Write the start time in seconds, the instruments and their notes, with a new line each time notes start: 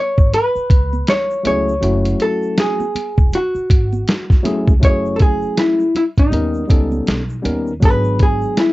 Already playing: hollow-body jazz guitar C#5
0.18 upright bass G#1, kick, shaker
0.33 hollow-body jazz guitar B4, closed hi-hat, low conga, shaker
0.55 muted upright bass stroke, shaker
0.70 upright bass C#2, kick, closed hi-hat, shaker
0.93 high conga, shaker
1.07 hollow-body jazz guitar C#5, snare, closed hi-hat, shaker
1.31 shaker
1.43 upright bass C#2, tine electric piano F#3 A3 C#4 E4 G#4, hollow-body jazz guitar C#5, closed hi-hat, high conga, low conga, shaker
1.69 shaker
1.81 upright bass F#1, tine electric piano F#3 A3 C#4 E4 F#4, closed hi-hat, shaker
2.05 closed hi-hat, shaker
2.20 hollow-body jazz guitar A4, closed hi-hat, shaker
2.43 shaker
2.58 hollow-body jazz guitar G#4, snare, closed hi-hat, high conga, shaker
2.80 high conga, shaker
2.95 closed hi-hat, high conga, low conga, shaker
3.17 upright bass E1, kick, shaker
3.33 hollow-body jazz guitar F#4, closed hi-hat, low conga, shaker
3.55 muted upright bass stroke, shaker
3.70 upright bass G#1, kick, closed hi-hat, shaker
3.93 high conga, shaker
4.08 snare, closed hi-hat, shaker
4.30 kick, snare, shaker
4.43 tine electric piano F#3 A3 C#4 E4 G#4, closed hi-hat, high conga, low conga, shaker
4.67 upright bass C#2, kick, shaker
4.80 upright bass F#1, tine electric piano F#3 A3 C#4 E4 F#4, kick, closed hi-hat, shaker
4.85 hollow-body jazz guitar C#5
4.90 tine electric piano G#4
5.05 shaker
5.16 hollow-body jazz guitar A4, kick, closed hi-hat
5.21 hollow-body jazz guitar G#4, shaker
5.42 shaker
5.57 hollow-body jazz guitar E4, snare, closed hi-hat, shaker
5.80 shaker
5.95 hollow-body jazz guitar E4, closed hi-hat, low conga, shaker
6.17 upright bass G#1, hollow-body jazz guitar D#4, kick, closed hi-hat, shaker
6.30 upright bass D#2, tine electric piano G3 B3 C#4 D#4 A#4, closed hi-hat, shaker
6.54 shaker
6.68 upright bass C#2, tine electric piano G3 B3 C#4 D#4 A4, kick, closed hi-hat, shaker
6.92 high conga, shaker
7.07 upright bass B1, snare, closed hi-hat, shaker
7.29 shaker
7.42 upright bass D#2, tine electric piano G3 B3 C#4 D#4 A#4, closed hi-hat, high conga, low conga, shaker
7.67 shaker
7.80 upright bass G#1, tine electric piano F#3 G#3 B3 D4 G#4, kick, closed hi-hat, shaker
7.85 hollow-body jazz guitar B4
8.04 shaker
8.19 hollow-body jazz guitar G#4, kick, closed hi-hat, shaker
8.42 shaker
8.57 hollow-body jazz guitar E4, snare, closed hi-hat, shaker